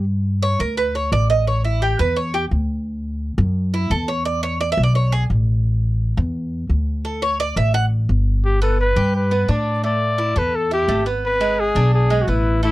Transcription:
Already playing: upright bass G2
0.42 cuban tres C#5
0.59 upright bass D2, cuban tres A#4
0.77 cuban tres B4
0.95 cuban tres C#5
1.12 upright bass A1, cuban tres D5
1.30 cuban tres D#5
1.47 cuban tres C#5
1.64 cuban tres E4
1.82 cuban tres G4
1.99 upright bass E2, cuban tres B4
2.16 cuban tres C#5
2.34 cuban tres G4
2.51 upright bass D2
3.38 upright bass F#2
3.74 cuban tres E4
3.90 upright bass E2, cuban tres A4
4.08 cuban tres C#5
4.25 cuban tres D5
4.43 cuban tres C#5
4.61 cuban tres D5
4.72 cuban tres E5
4.77 upright bass B1
4.83 cuban tres D5
4.95 cuban tres C#5
5.12 cuban tres G#4
5.30 upright bass A1
6.17 upright bass E2
6.69 upright bass D2
7.05 cuban tres A4
7.22 cuban tres C#5
7.40 cuban tres D5
7.56 upright bass A1, cuban tres E5
7.74 cuban tres F#5
8.09 upright bass G1
8.45 trumpet G4
8.62 cuban tres B3, trumpet A4
8.81 trumpet B4
8.96 upright bass G2, cuban tres G4
9.16 trumpet B4
9.31 cuban tres B3
9.49 upright bass A2, cuban tres D4, trumpet D5
9.84 cuban tres A3, trumpet D5
10.18 cuban tres E4
10.36 upright bass E2, cuban tres A4, trumpet B4
10.56 trumpet A4
10.71 cuban tres E4, trumpet G4
10.88 upright bass G#1, cuban tres A3
11.06 cuban tres B3
11.26 trumpet B4
11.41 cuban tres G#3
11.60 trumpet G#4
11.75 upright bass B1, cuban tres D4
11.94 trumpet G#4
12.10 cuban tres G#3
12.22 trumpet F#4
12.27 upright bass A1, cuban tres B3, trumpet E4
12.63 cuban tres A3, trumpet E4

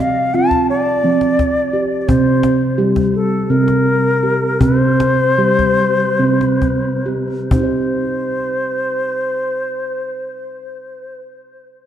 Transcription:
Already playing: steel tongue drum F3 C4
0.00 bansuri F5
0.16 cajon slap
0.34 steel tongue drum C4 F4, bansuri A5, cajon slap
0.51 cajon bass, cajon slap
0.70 bansuri D5
1.04 steel tongue drum F3 C4
1.21 cajon slap
1.39 cajon bass, cajon slap
1.73 steel tongue drum G4, cajon slap
2.01 bansuri D5
2.08 steel tongue drum C3 C4, bansuri C5, cajon bass
2.27 cajon slap
2.43 cajon slap
2.61 cajon slap
2.78 steel tongue drum G3 G4, cajon slap
2.96 cajon bass, cajon slap
3.15 bansuri A4
3.50 steel tongue drum C3 C4, bansuri A#4
3.68 cajon slap
3.87 cajon slap
4.23 steel tongue drum G4, cajon slap
4.60 steel tongue drum C3 C4, bansuri B4, cajon bass
4.78 bansuri C5
5.00 cajon slap
5.38 steel tongue drum G3 G4, cajon slap
5.59 cajon bass, cajon slap
5.99 cajon slap
6.19 steel tongue drum C3 C4, cajon slap
6.41 cajon slap
6.62 cajon bass, cajon slap
7.06 steel tongue drum G4, cajon slap
7.28 cajon slap
7.51 steel tongue drum C4, bansuri C5, cajon bass
7.55 steel tongue drum D#4
7.59 steel tongue drum G4
7.63 steel tongue drum C5

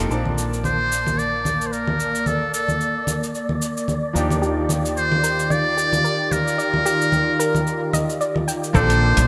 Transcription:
Already playing: grand piano F3 A#3 C4 D#4 F4 G4 A4
0.09 fretless electric bass A#1, grand piano F3 A#3 C4 D4 A5, analog synth pad A#3 D5 A5, synth texture D5, shaker
0.26 low conga
0.38 shaker
0.53 shaker
0.64 muted trumpet C5, low conga, shaker
0.92 shaker
1.07 low conga, shaker
1.18 muted trumpet D5, shaker
1.45 low conga, shaker
1.61 shaker
1.67 muted trumpet C5
1.72 muted trumpet A#4, shaker
1.88 low conga
2.00 shaker
2.15 shaker
2.26 muted trumpet A4, low conga, shaker
2.54 muted trumpet A4, shaker
2.68 low conga, shaker
2.81 shaker
3.07 low conga, shaker
3.23 shaker
3.35 shaker
3.49 low conga
3.62 shaker
3.77 shaker
3.88 low conga, shaker
4.13 fretless electric bass D#2, analog synth pad D#3 F4 G4, grand piano F3 A#3 D4 D#4 G4, shaker
4.30 low conga, shaker
4.42 synth pluck G4, shaker
4.69 low conga, shaker
4.85 shaker
4.97 muted trumpet C5, shaker
5.12 low conga
5.23 synth pluck A#4, shaker
5.39 shaker
5.50 synth pluck D5, muted trumpet D5, low conga, shaker
5.77 synth pluck G4, shaker
5.93 low conga, shaker
6.04 synth pluck A#4, shaker
6.32 muted trumpet A#4, low conga, shaker
6.48 shaker
6.58 synth pluck D5, shaker
6.74 low conga
6.85 synth pluck G4, shaker
7.01 shaker
7.12 low conga, shaker
7.39 synth pluck A#4, shaker
7.55 low conga, shaker
7.67 shaker
7.93 synth pluck D#5, low conga, shaker
8.09 shaker
8.21 synth pluck D5, shaker
8.36 low conga
8.48 synth pluck G5, shaker
8.64 shaker
8.73 fretless electric bass A#1, grand piano F3 A#3 C4 D4 A4, analog synth pad A#3 D4 A5, synth pluck A4, muted trumpet C5, kick, low conga, shaker
8.90 closed hi-hat, shaker
9.17 fretless electric bass A#1, closed hi-hat, shaker

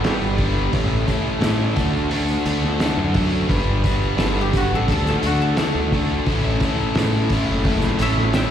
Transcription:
Already playing: koto F#4 A4
0.03 overdriven electric guitar G3 B3 D4 B4, koto E4 G4, snare, open hi-hat
0.21 fingered electric bass G1
0.37 overdriven electric guitar G3 B3 D4 B4, kick, open hi-hat
0.72 fingered electric bass A1, overdriven electric guitar A2 A3 C#4 E4 A4, kick, open hi-hat, tambourine
1.06 overdriven electric guitar A2 A3 C#4 E4 A4, kick, open hi-hat, tambourine
1.27 tambourine
1.39 overdriven electric guitar A2 A3 C#4 E4 A4, fingered electric bass A2, snare, open hi-hat
1.44 tambourine
1.75 fingered electric bass D2, overdriven electric guitar D3 D4 F#4 A4, kick, open hi-hat, tambourine
1.96 tambourine
2.10 overdriven electric guitar D3 D4 F#4 A4, open hi-hat
2.28 tambourine
2.45 fingered electric bass D2, overdriven electric guitar D3 D4 F#4 A4, open hi-hat, tambourine
2.64 snare
2.80 overdriven electric guitar D3 D4 F#4 A4, snare, open hi-hat, tambourine
2.97 fingered electric bass F#2
3.14 overdriven electric guitar D3 D4 F#4 A4, kick, open hi-hat
3.35 tambourine
3.48 fingered electric bass G1, overdriven electric guitar G3 B3 D4 B4, kick, open hi-hat
3.52 tambourine
3.83 overdriven electric guitar G3 B3 D4 B4, kick, open hi-hat, tambourine
4.03 tambourine
4.17 fingered electric bass G1, overdriven electric guitar G3 B3 D4 B4, koto A4, snare, open hi-hat, tambourine
4.41 koto G4
4.52 overdriven electric guitar G3 B3 D4 B4, kick, open hi-hat, tambourine
4.57 koto F#4
4.71 fingered electric bass A1
4.75 koto A4
4.87 fingered electric bass D2, overdriven electric guitar D3 D4 F#4 A4, kick, open hi-hat
4.92 koto A4
5.05 koto A4, snare, tambourine
5.22 fingered electric bass D2, overdriven electric guitar D3 D4 F#4 A4, open hi-hat, tambourine
5.26 koto F#4
5.42 koto A4
5.57 overdriven electric guitar D3 D4 F#4 A4, koto A4, snare, open hi-hat, tambourine
5.75 fingered electric bass D2
5.92 overdriven electric guitar D3 D4 F#4 A4, kick, open hi-hat
6.09 tambourine
6.26 fingered electric bass A1, overdriven electric guitar A2 A3 C#4 E4 A4, kick, open hi-hat, tambourine
6.60 overdriven electric guitar A2, kick, open hi-hat, tambourine
6.64 overdriven electric guitar A3 C#4 E4 A4
6.81 tambourine
6.95 fingered electric bass A2, overdriven electric guitar A2 A3 C#4 E4 A4, snare, open hi-hat, tambourine
7.30 overdriven electric guitar A2 A3 C#4 E4, kick, open hi-hat, tambourine
7.34 overdriven electric guitar A4
7.48 fingered electric bass F#1
7.65 overdriven electric guitar A2 A3 C#4 E4 A4, kick, open hi-hat
7.82 snare, tambourine
7.99 fingered electric bass A1, overdriven electric guitar A2 A3 C#4 E4 A4, koto C#5 E5, open hi-hat, tambourine
8.18 snare
8.33 overdriven electric guitar A2 A3 C#4 E4 A4, koto E5 G5, snare, open hi-hat, tambourine

